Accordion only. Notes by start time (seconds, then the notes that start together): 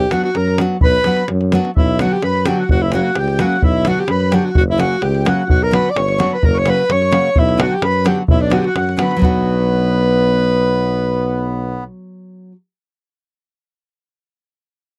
0.10 F#5
0.23 F#5
0.35 A#5
0.82 B5
1.76 E5
2.00 F#5
2.11 G5
2.23 B5
2.45 G5
2.60 F#5
2.70 F#5
2.83 E5
2.95 F#5
3.19 G5
3.40 F#5
3.63 E5
3.87 F#5
3.99 G5
4.10 B5
4.31 G5
4.44 F#5
4.57 F#5
4.70 E5
4.82 F#5
5.04 G5
5.28 F#5
5.51 F#5
5.63 A#5
5.74 B5
5.91 D6
5.97 C#6
6.33 B5
6.43 A#5
6.54 C#6
6.67 B5
6.91 C#6
7.38 E5
7.60 F#5
7.71 G5
7.83 B5
8.07 G5
8.31 E5
8.43 D5
8.53 F#5
8.58 G5
8.66 F#5
8.76 F#5
9.02 B5
9.22 B3